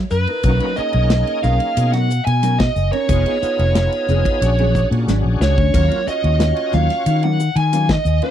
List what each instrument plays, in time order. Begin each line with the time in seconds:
0.10 fretless electric bass F#2, lead electric guitar B4, hi-hat pedal
0.27 clean electric guitar D#4 E4 A#4, ride
0.43 fretless electric bass B1, clean electric guitar F#3 C#4 D#4 A#4, tonewheel organ A#3 C#4 D#4 F#4, kick, hi-hat pedal, ride
0.60 clean electric guitar F#3 C#4 D#4 A#4, ride
0.76 tonewheel organ A#3 C#4 D#4 G#4, lead electric guitar D#5, muted clean electric guitar stroke, muted fretless electric bass stroke, hi-hat pedal
0.93 fretless electric bass B1, muted clean electric guitar stroke, ride
1.10 muted clean electric guitar stroke, snare, hi-hat pedal, ride
1.27 ride
1.43 fretless electric bass B1, clean electric guitar F#3 C#4 D#4 A#4, lead electric guitar F5, hi-hat pedal
1.60 muted clean electric guitar stroke, ride
1.77 fretless electric bass B2, muted clean electric guitar stroke, hi-hat pedal, ride
1.92 clean electric guitar F#3 C#4 D#4 A#4, lead electric guitar F#5, snare, ride
2.09 muted clean electric guitar stroke, hi-hat pedal
2.25 fretless electric bass B2, lead electric guitar G#5, muted clean electric guitar stroke, ride
2.42 clean electric guitar F#3 C#4 D#4 A#4, hi-hat pedal, ride
2.59 lead electric guitar D#5, muted clean electric guitar stroke, kick, snare, ride
2.76 fretless electric bass F#1, hi-hat pedal
2.92 clean electric guitar C#4 D#4 A#4, lead electric guitar C#5, ride
3.08 fretless electric bass F1, tonewheel organ B3 D#4 F4 G#4, clean electric guitar B3 D#4 G#4, kick, hi-hat pedal, ride
3.26 clean electric guitar B3 D#4 G#4, ride
3.41 tonewheel organ B3 D#4 F4 G#4, muted clean electric guitar stroke, muted fretless electric bass stroke, hi-hat pedal
3.59 fretless electric bass F1, muted clean electric guitar stroke, ride
3.75 muted clean electric guitar stroke, snare, hi-hat pedal, ride
3.92 ride
4.08 fretless electric bass F1, clean electric guitar B3 D#4 G#4, hi-hat pedal
4.25 muted clean electric guitar stroke, kick, ride
4.41 fretless electric bass A#1, tonewheel organ C#4 D4 F#4 G#4, muted clean electric guitar stroke, hi-hat pedal, ride
4.59 clean electric guitar F#3 C#4 D4 G#4, ride
4.75 muted clean electric guitar stroke, kick, hi-hat pedal
4.91 fretless electric bass A#2, muted clean electric guitar stroke, ride
5.07 fretless electric bass G#1, clean electric guitar F#3 C#4 D4 G#4, snare, hi-hat pedal
5.24 fretless electric bass A#1, muted clean electric guitar stroke
5.40 fretless electric bass C#2, lead electric guitar C#5, snare, hi-hat pedal
5.58 fretless electric bass D2, clean electric guitar C#4 D4 G#4, kick
5.72 fretless electric bass D#2, clean electric guitar F#3 A#3 C#4 F4, tonewheel organ C#4 F4 F#4 A#4, kick, hi-hat pedal, ride, splash
5.91 clean electric guitar F#3 A#3 C#4 F4, ride
6.06 tonewheel organ C#4 F4 F#4 C#5, lead electric guitar D#5, muted fretless electric bass stroke, muted clean electric guitar stroke, hi-hat pedal
6.24 fretless electric bass D#2, muted clean electric guitar stroke, ride
6.40 muted clean electric guitar stroke, snare, hi-hat pedal, ride
6.57 ride
6.72 fretless electric bass D#2, clean electric guitar F#3 A#3 C#4 F4, lead electric guitar F5, hi-hat pedal
6.90 muted clean electric guitar stroke, snare, ride
7.06 fretless electric bass D#3, muted clean electric guitar stroke, hi-hat pedal, ride
7.23 clean electric guitar F#3 A#3 C#4 F4, lead electric guitar F#5, ride
7.40 muted clean electric guitar stroke, hi-hat pedal
7.56 fretless electric bass D#3, lead electric guitar G#5, muted clean electric guitar stroke, ride
7.72 clean electric guitar F#3 A#3 C#4 F4, hi-hat pedal, ride
7.89 lead electric guitar D#5, muted clean electric guitar stroke, kick, snare, ride
8.05 fretless electric bass D#2, hi-hat pedal
8.22 clean electric guitar A#3 C#4 F4, lead electric guitar C#5, ride